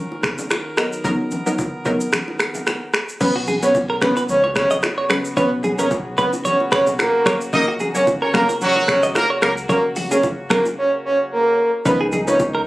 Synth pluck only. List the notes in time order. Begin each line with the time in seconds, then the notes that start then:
0.77 F#3 B3 D#4 A#4
1.04 F#3 B3 D#4 A#4
1.46 F#3 B3 D#4 A#4
1.85 F#3 B3 D#4 A#4
3.20 F#3 B3 C#4 B4
3.62 F#3 B3 C#4 B4
4.01 F#3 B3 C#4 B4
5.09 F#3 B3 C#4 B4
5.37 F#3 B3 C#4 B4
5.78 F#3 B3 C#4 B4
6.18 F#3 B3 C#4 B4
7.26 F#3 A#3 C#4 A#4
7.53 F#3 A#3 C#4 A#4
7.95 F#3 A#3 C#4 A#4
8.34 F#3 A#3 C#4 A#4
9.42 F#3 A#3 C#4 A#4
9.69 F#3 A#3 C#4 A#4
10.11 F#3 A#3 C#4 A#4
10.50 F#3 A#3 C#4 A#4
11.85 F3 C#4 D#4 B4
12.27 F3 C#4 D#4 B4